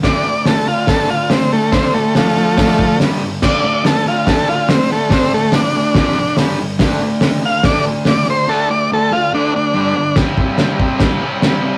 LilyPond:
<<
  \new Staff \with { instrumentName = "Transistor combo organ" } { \time 4/4 \key c \lydian \tempo 4 = 142 d''4 a'8 f'8 a'8 f'8 c'8 a8 | c'8 a8 <f a>2 r4 | d''4 a'8 f'8 a'8 f'8 c'8 a8 | c'8 a8 d'2 r4 |
r4. f''8 d''8 r8 d''8 c''8 | a'8 d''8 a'8 f'8 d'8 d'4. | r1 | }
  \new Staff \with { instrumentName = "Distorted electric guitar" } { \clef bass \time 4/4 \key c \lydian <d a d'>8 <d a>8 <d a>8 <d a>8 <d a d'>8 <d a>8 <d a>8 <d a>8 | <d a d'>8 <d a>8 <d a>8 <d a>8 <d a d'>8 <d a>8 <g, d g>8 <g, d>8 | <d a d'>8 <d a>8 <d a>8 <d a>8 <d a d'>8 <d a>8 <d a>8 <d a>8 | <d a d'>8 <d a>8 <d a>8 <d a>8 <f, c f>8 <f, c>8 <g, d g>8 <g, d>8 |
<d a d'>8 <d a>8 <d a>8 <d a>8 <d a d'>8 <d a>8 <d a>8 <d a>8 | <d a d'>8 <d a>8 <d a>8 <d a>8 <d a d'>8 <d a>8 <g, d g>8 <g, d>8 | <c g c'>8 <g c'>8 <c g c'>8 <g c'>8 <c g c'>8 <c g c'>8 <c g c'>8 <g c'>8 | }
  \new DrumStaff \with { instrumentName = "Drums" } \drummode { \time 4/4 <hho bd sn>4 <hho sn>4 <hho bd sn>4 <hho sn>4 | <hho bd sn>4 <hho sn>4 <hho bd sn>8 bd8 <hho sn>4 | <cymc bd sn>4 <hho sn>4 <hho bd sn>4 <hho sn>4 | <hho bd sn>4 <hho sn>4 <hho bd sn>4 <hho sn>4 |
<hho bd sn>4 <hho sn>4 <hho bd sn>4 <hho sn>4 | r4 r4 r4 r4 | <cymc bd sn>8 bd8 <cymc sn>8 bd8 <cymc bd sn>4 <cymc sn>4 | }
>>